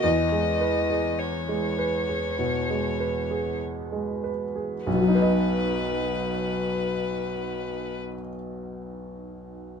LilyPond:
<<
  \new Staff \with { instrumentName = "Violin" } { \time 4/4 \key b \major \tempo 4 = 48 dis''4 cis''2 r4 | b'1 | }
  \new Staff \with { instrumentName = "Upright piano" } { \time 4/4 \key b \major e,16 gis16 b'16 gis'8 gis16 b'16 gis'16 b,16 gis16 b'16 gis'8 gis16 b'16 gis'16 | <b,, b, fis dis' b' dis''>1 | }
>>